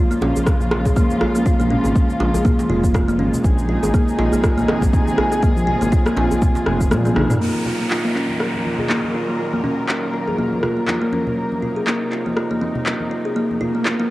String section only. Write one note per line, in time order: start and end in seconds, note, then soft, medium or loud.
0.00 3.41 C#3 medium
0.00 3.41 F3 medium
0.00 7.37 G#3 medium
0.00 3.41 A#3 medium
0.00 3.41 F4 medium
3.44 7.37 C3 medium
3.44 7.37 D#3 medium
3.44 5.41 D#4 medium
3.44 7.37 G#4 medium
5.43 7.39 F4 medium
7.41 11.34 A#2 medium
7.41 11.34 D#3 medium
7.41 14.10 F#3 medium
7.41 14.10 A#3 medium
7.41 11.34 F4 medium
7.41 14.10 A#4 medium
11.37 14.10 C3 medium
11.37 14.10 D#4 medium